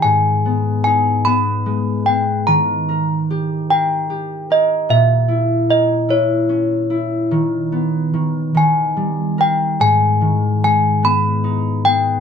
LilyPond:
<<
  \new Staff \with { instrumentName = "Handbells" } { \time 6/8 \key gis \minor \tempo 4. = 49 gis''4 gis''8 b''4 g''8 | ais''4. g''4 dis''8 | e''4 dis''8 cis''4.~ | cis''4. gis''4 g''8 |
gis''4 gis''8 b''4 g''8 | }
  \new Staff \with { instrumentName = "Harp" } { \time 6/8 \key gis \minor gis,8 b8 dis'8 b8 gis8 b8 | dis8 ais'8 g'8 ais'8 g'8 ais'8 | ais,8 e'8 ais'8 e'8 cis'8 e'8 | dis8 b8 dis8 dis8 g8 ais'8 |
gis,8 dis8 gis8 b8 dis'8 b8 | }
>>